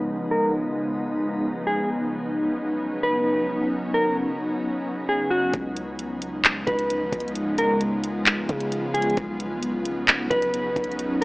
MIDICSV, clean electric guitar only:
0, 0, Header, 1, 2, 480
1, 0, Start_track
1, 0, Tempo, 454545
1, 87, Time_signature, 4, 2, 24, 8
1, 11872, End_track
2, 0, Start_track
2, 0, Title_t, "Clean electric guitar"
2, 0, Program_c, 0, 27
2, 330, Note_on_c, 0, 70, 74
2, 556, Note_off_c, 0, 70, 0
2, 1762, Note_on_c, 0, 68, 78
2, 1992, Note_off_c, 0, 68, 0
2, 3202, Note_on_c, 0, 71, 88
2, 3882, Note_off_c, 0, 71, 0
2, 4162, Note_on_c, 0, 70, 73
2, 4392, Note_off_c, 0, 70, 0
2, 5373, Note_on_c, 0, 68, 86
2, 5598, Note_off_c, 0, 68, 0
2, 5602, Note_on_c, 0, 66, 87
2, 5832, Note_off_c, 0, 66, 0
2, 7041, Note_on_c, 0, 71, 80
2, 7722, Note_off_c, 0, 71, 0
2, 8009, Note_on_c, 0, 70, 80
2, 8236, Note_off_c, 0, 70, 0
2, 9442, Note_on_c, 0, 68, 85
2, 9672, Note_off_c, 0, 68, 0
2, 10882, Note_on_c, 0, 71, 93
2, 11562, Note_off_c, 0, 71, 0
2, 11872, End_track
0, 0, End_of_file